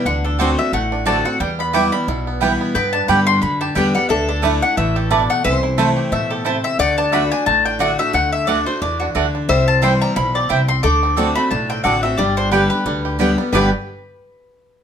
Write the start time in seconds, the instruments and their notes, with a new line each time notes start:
0.05 upright bass D2, steel-string acoustic guitar D3, five-string banjo D3, mandolin F#5
0.24 five-string banjo D4, mandolin A4
0.39 steel-string acoustic guitar D3 A3 C4 F#4, five-string banjo A3, mandolin C4 F#4 C5 D5 A5
0.58 steel-string acoustic guitar C4 F#4, five-string banjo D4, mandolin E5
0.73 upright bass A1, steel-string acoustic guitar A2, five-string banjo A3, mandolin F#5
0.92 five-string banjo D4
1.05 steel-string acoustic guitar D3 A3 C4 F#4, mandolin C4 F#4 D5 A5, five-string banjo D4
1.25 five-string banjo C4, steel-string acoustic guitar C4 F#4, mandolin F#5
1.40 upright bass E2, steel-string acoustic guitar E2, five-string banjo G3, mandolin G5
1.59 five-string banjo B3, mandolin B5
1.73 steel-string acoustic guitar E3 G3 B3 E4, mandolin B3 E4 B4 G5 D6, five-string banjo E4
1.92 five-string banjo G3, steel-string acoustic guitar B3 E4, mandolin B5
2.08 upright bass B1, steel-string acoustic guitar B2, five-string banjo E4
2.27 five-string banjo B3
2.41 steel-string acoustic guitar E3 G3 B3 E4, mandolin B3 E4 B4 G5, five-string banjo G4
2.61 five-string banjo B3
2.75 upright bass G2, steel-string acoustic guitar G2, five-string banjo B3, resonator guitar played with a steel bar B4, mandolin G5
2.93 five-string banjo D4, mandolin A5
3.08 upright bass G2, steel-string acoustic guitar D3 G3 B3 G4, five-string banjo G3, mandolin B3 G4 D5 G5 B5
3.27 five-string banjo D4, mandolin C6
3.42 upright bass F#2, steel-string acoustic guitar D3, mandolin B5
3.61 five-string banjo G4, mandolin A5
3.75 upright bass E2, steel-string acoustic guitar D3 G3 B3 G4, mandolin B3 G4 D5 G5, five-string banjo D4
3.95 five-string banjo G3, steel-string acoustic guitar B3 G4, mandolin F#5
4.09 upright bass D2, steel-string acoustic guitar D3, five-string banjo D4, resonator guitar played with a steel bar A4, mandolin E5
4.28 five-string banjo D4, mandolin A4
4.42 steel-string acoustic guitar D3 A3 D4 E4, mandolin A3 E4 D5 A5, five-string banjo A3
4.62 five-string banjo D4, steel-string acoustic guitar D4 E4, mandolin F#5
4.77 upright bass A1, steel-string acoustic guitar E3, five-string banjo A3, mandolin E5
4.96 five-string banjo G4, mandolin A4
5.10 steel-string acoustic guitar B2, mandolin A3 E4 D5 A5, five-string banjo D4
5.30 five-string banjo A3, mandolin F#5
5.44 upright bass C2, steel-string acoustic guitar C3, five-string banjo E3, resonator guitar played with a steel bar C5, mandolin E5
5.63 five-string banjo E4
5.78 steel-string acoustic guitar E3 A3 C4 E4, mandolin A3 E4 C5 A5, five-string banjo A3
5.96 five-string banjo G4
6.12 upright bass A2, steel-string acoustic guitar B2, five-string banjo A3, mandolin E5
6.30 five-string banjo G4, mandolin A4
6.45 steel-string acoustic guitar C3, mandolin A3 E4 C5 A5, five-string banjo E4
6.64 five-string banjo C4, mandolin E5
6.79 upright bass D2, steel-string acoustic guitar D3, five-string banjo A3, resonator guitar played with a steel bar D5, mandolin F#5
6.98 five-string banjo D4, mandolin A5
7.12 steel-string acoustic guitar D3 A3 D4 F#4, mandolin A3 F#4 D5 F#5 B5, five-string banjo A3
7.31 five-string banjo D4, steel-string acoustic guitar F#4, mandolin G#5
7.46 upright bass A1, steel-string acoustic guitar A2, five-string banjo A3, mandolin A5
7.65 five-string banjo D4, mandolin G5
7.79 steel-string acoustic guitar D3 A3 D4 F#4, mandolin A3 F#4 D5 F#5, five-string banjo D4
7.98 five-string banjo A3, steel-string acoustic guitar D4 F#4, mandolin E5
8.13 upright bass D2, steel-string acoustic guitar D3, five-string banjo A3, mandolin F#5
8.32 mandolin E5
8.47 steel-string acoustic guitar D3 A3 D4 F#4, mandolin A3 F#4 D5 F#5, five-string banjo D4
8.66 five-string banjo A3, steel-string acoustic guitar D4 F#4, mandolin C5
8.82 upright bass E2, steel-string acoustic guitar E3, five-string banjo D4, mandolin D5
9.00 five-string banjo D4, mandolin F#4
9.15 upright bass D2, steel-string acoustic guitar D3, mandolin A3 F#4 D5 F#5, five-string banjo D4
9.35 five-string banjo D4
9.49 upright bass C2, steel-string acoustic guitar C3, five-string banjo G3, resonator guitar played with a steel bar C5, mandolin E5
9.68 mandolin A5
9.82 steel-string acoustic guitar E3 G3 C4 E4, mandolin C4 E4 C5 G5 C6, five-string banjo E4
10.01 five-string banjo G3, mandolin A#5
10.16 upright bass B1, steel-string acoustic guitar B2, five-string banjo E4, mandolin B5
10.35 five-string banjo C4, mandolin D5
10.49 upright bass C2, steel-string acoustic guitar C3, mandolin C4 E4 C5 G5, five-string banjo G4
10.68 five-string banjo C4, mandolin C6
10.83 upright bass D2, steel-string acoustic guitar D3, five-string banjo A3, resonator guitar played with a steel bar A4, mandolin D6
11.03 five-string banjo C4
11.17 steel-string acoustic guitar D3 A3 C4 F#4, mandolin C4 F#4 D5 A5, five-string banjo D4
11.35 five-string banjo A3, steel-string acoustic guitar C4 F#4, mandolin B5
11.51 upright bass B1, steel-string acoustic guitar A2, five-string banjo D4, mandolin A5
11.70 five-string banjo C4, mandolin G5
11.84 upright bass A1, steel-string acoustic guitar D3 A3 C4 F#4, mandolin C4 F#4 D5 F#5 A5, five-string banjo D4
12.03 five-string banjo C4, steel-string acoustic guitar C4 F#4, mandolin E5
12.17 upright bass G1, steel-string acoustic guitar G2, five-string banjo G3, resonator guitar played with a steel bar G4, mandolin D5
12.37 five-string banjo D4, mandolin C5
12.51 steel-string acoustic guitar D3 G3 B3 G4, five-string banjo G3, mandolin B3 G4 B4 D5 G5
12.70 steel-string acoustic guitar B3 G4, five-string banjo G4, mandolin B4
12.86 upright bass D2, steel-string acoustic guitar D3, five-string banjo G3
13.05 five-string banjo G4
13.19 steel-string acoustic guitar D3 G3 B3 G4, mandolin B3 G4 D5 G5, five-string banjo B3
13.38 five-string banjo G3, steel-string acoustic guitar B3 G4
13.52 upright bass G1, steel-string acoustic guitar G2 B2 D3 G3 B3 G4, five-string banjo G3 B3, mandolin B3 G4 B4 D5 G5, resonator guitar played with a steel bar B4
13.57 five-string banjo D4 G4